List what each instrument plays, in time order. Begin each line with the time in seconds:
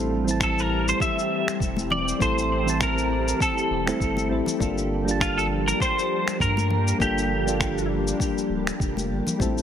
Already playing: analog synth bass A1, string machine E3 G3 C4 G4, synth keys G3 A3 C4 E4 A4
0.24 synth keys E3 G3 C4
0.28 synth keys E4 A5, cabasa
0.40 clean electric guitar A4, finger snap, kick, cabasa
0.59 clean electric guitar A#4, cabasa
0.88 clean electric guitar C5, cabasa
1.00 clean electric guitar E5, kick, cabasa
1.19 cabasa
1.48 finger snap, cabasa
1.60 analog synth bass E1, kick, cabasa
1.76 high conga, cabasa
1.90 clean electric guitar D5, low conga
2.08 cabasa
2.19 analog synth bass A1, synth keys G3 A3 C4 E4 A4, clean electric guitar C5, kick, high conga, cabasa
2.38 cabasa
2.64 synth keys E3 G3 C4
2.68 synth keys E4 A5, cabasa
2.80 clean electric guitar A#4, finger snap, kick, cabasa
2.98 cabasa
3.28 cabasa
3.40 clean electric guitar A4, kick, cabasa
3.58 cabasa
3.71 analog synth bass E1
3.86 synth keys G3 A3 C4 E4 A4, finger snap, cabasa
4.00 analog synth bass G1, kick, cabasa
4.17 high conga, cabasa
4.29 analog synth bass A1, synth keys G3 A3 C4 E4 A4
4.46 low conga, cabasa
4.59 analog synth bass G1, string machine F3 G3 A#3 D4, synth keys G3 A#3 D4 F4 A4, kick, high conga, cabasa
4.78 cabasa
5.05 synth keys G3 A#3 D4, cabasa
5.10 synth keys F4 A5
5.20 clean electric guitar F4, finger snap, kick, cabasa
5.38 clean electric guitar A4, cabasa
5.68 clean electric guitar A#4, cabasa
5.80 clean electric guitar C5, kick, cabasa
5.99 cabasa
6.28 finger snap, cabasa
6.40 analog synth bass G2, clean electric guitar A#4, kick, cabasa
6.57 high conga, cabasa
6.70 low conga
6.88 cabasa
6.99 analog synth bass G1, synth keys G3 A#3 D4 F4 A4, clean electric guitar G4, kick, high conga, cabasa
7.18 cabasa
7.44 synth keys G3 A#3 D4, cabasa
7.49 synth keys F4 A4
7.60 finger snap, kick, cabasa
7.78 cabasa
8.08 cabasa
8.20 kick, cabasa
8.38 cabasa
8.49 analog synth bass D1
8.67 finger snap, cabasa
8.80 analog synth bass F1, kick, cabasa
8.97 high conga, cabasa
9.10 analog synth bass G1
9.27 low conga, cabasa
9.39 analog synth bass A1, synth keys G3 A3 C4 E4 A4, kick, high conga, cabasa
9.58 cabasa